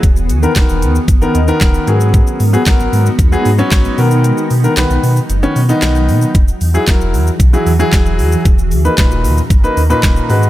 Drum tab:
HH |x-x-x-x-x-x-x-x-|x-o-x-o-x-o-x-o-|x-o-x-o-x-o-x-o-|x-o-x-o-x-o-x-o-|
SH |xxxxxxxxxxxxxxxx|xxxxxxxxxxxxxxxx|xxxxxxxxxxxxxxxx|xxxxxxxxxxxxxxxx|
CP |----x-------x---|----x-------x---|----x-------x---|----x-------x---|
SD |----o-------o---|----o-------o---|----o-------o---|----o-------o---|
BD |o---o---o---o---|o---o---o---o---|----------------|o---o---o---o---|

HH |x-o-x-o-x-o-x-o-|
SH |xxxxxxxxxxxxxxxx|
CP |----x-------x---|
SD |----o-------o---|
BD |o---o---o---o---|